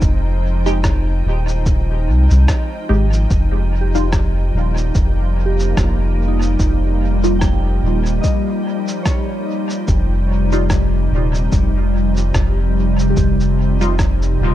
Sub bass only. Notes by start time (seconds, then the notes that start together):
0.02 F1
1.25 D#1
2.07 C2
2.31 C2
2.90 G#1
3.31 F1
4.54 D#1
4.95 F1
5.77 F1
6.59 F1
7.83 D#1
9.88 F1
11.11 D#1
11.52 F1
12.35 F1
13.17 F1
14.40 D#1